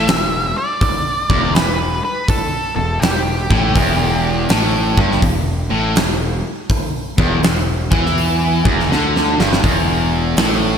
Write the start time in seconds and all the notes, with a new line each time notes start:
Already playing: E5
0.06 E1 E2, snare, open hi-hat
0.58 D5
0.81 kick, open hi-hat
1.30 E1 E2, kick
1.54 E1 E2 B4, snare, open hi-hat
2.05 B4
2.28 A4, kick, open hi-hat
2.76 E1 E2 A4
3.00 E1 E2 G4, snare, open hi-hat
3.50 A1 A2, kick
3.76 E1 E2, kick, open hi-hat
4.49 A1 A2, snare, open hi-hat
4.97 G1 G2, kick
5.12 snare
5.22 E1 E2, kick, open hi-hat
5.70 A1 A2
5.96 E1 E2, snare, open hi-hat
6.70 kick, open hi-hat
7.18 E1 E2, kick
7.43 E1 E2, snare, open hi-hat
7.91 E2 E3, kick
8.06 snare
8.18 open hi-hat
8.65 E1 E2, kick
8.80 snare
8.90 D2 D3, snare
9.16 snare
9.38 G1 G2, snare
9.53 snare
9.63 E1 E2, kick, open hi-hat
10.37 A1 A2, snare, open hi-hat